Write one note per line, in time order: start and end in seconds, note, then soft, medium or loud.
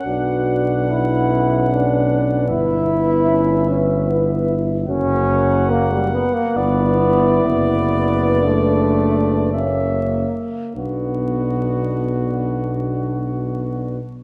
0.00 2.48 F#5 medium
0.06 2.51 B1 medium
0.06 0.92 D4 medium
0.06 0.92 F#4 medium
0.06 4.72 B4 medium
0.91 1.33 D4 medium
0.91 1.74 E4 medium
1.32 2.50 C#4 medium
1.72 2.49 D4 medium
2.49 4.87 G1 medium
2.49 3.30 B3 medium
2.49 3.70 E4 medium
2.49 4.57 E5 medium
3.28 3.70 C#4 medium
3.68 4.09 B3 medium
3.68 4.10 C#4 medium
4.08 4.48 B3 medium
4.08 4.88 E4 medium
4.87 6.24 F#1 medium
4.87 5.72 C#4 loud
4.87 6.24 F#4 medium
4.87 6.52 A#4 medium
4.87 6.58 F#5 medium
5.70 5.94 A#3 loud
5.92 6.12 G3 medium
6.13 6.35 B3 loud
6.34 6.57 A#3 medium
6.55 7.41 G1 medium
6.55 7.45 B3 loud
6.55 8.45 E4 medium
6.55 9.53 B4 medium
6.55 9.52 D5 medium
7.45 10.25 F#1 medium
7.45 8.46 B3 medium
8.44 9.55 A3 loud
8.44 9.55 D4 medium
9.53 10.76 A#3 medium
9.53 10.14 C#4 medium
9.53 10.28 C#5 medium
9.53 10.28 E5 medium
10.76 13.99 B1 medium
10.76 13.99 B3 medium
10.76 13.98 D4 medium
10.76 13.99 D4 soft
10.76 13.99 F#4 medium